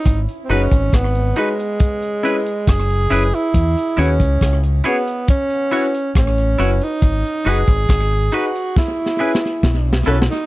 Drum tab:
HH |x--x--x--x--x--x--x--x--x--x--x--x--x--x--x--x--|x--x--x--x--x--x--x--x--x--x--x--x--x--x--x--x--|x--x--x--x--x--x--x--x--------------------------|
SD |------------r-----------------------r-----------|------------r-----------------------r-----------|------------r-----------o---o---o---o---o---o---|
BD |o--------o--o-----------o-----------o-----------|o--------o--o-----------o-----------o-----------|o--------o--o-----------o-----------o-----------|